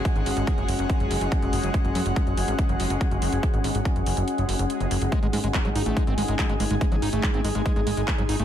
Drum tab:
HH |xxoxxxoxxxoxxxox|xxoxxxoxxxoxxxox|xxoxxxoxxxoxxxox|xxoxxxoxxxoxxxox|
CP |----------------|----------------|----------------|----x-------x---|
BD |o---o---o---o---|o---o---o---o---|o---o-----------|o---o---o---o---|

HH |xxoxxxoxxxoxxxox|
CP |----x-------x---|
BD |o---o---o---o---|